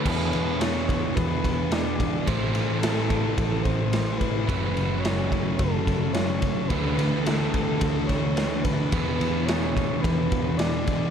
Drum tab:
CC |x-------|--------|--------|--------|
RD |-xxxxxxx|xxxxxxxx|xxxxxxxx|xxxxxxxx|
SD |--o---o-|--o---o-|--o---o-|--o--oo-|
BD |o--ooo-o|o--ooo-o|o--ooo-o|o--ooo-o|

CC |--------|
RD |xxxxxxxx|
SD |--o---o-|
BD |o--ooo-o|